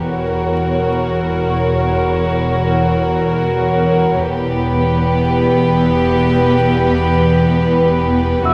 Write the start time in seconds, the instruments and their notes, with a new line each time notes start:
Already playing: celesta B4 A#5
0.09 double bass section E1, cello section E2, synth drone E2, violin section F#4 C#5, glass harmonica F#4 C#5 A#5, viola section A#4
1.48 celesta C#5 C#6
4.25 double bass section E1, cello section E2, synth drone E2, viola section B3, violin section G4 B4, glass harmonica G4 B4 B5
8.44 double bass section E1, cello section E2, synth drone E2, viola section C#4, violin section F#4 A#4, glass harmonica F#4 A#4 C#5, celesta E5 E6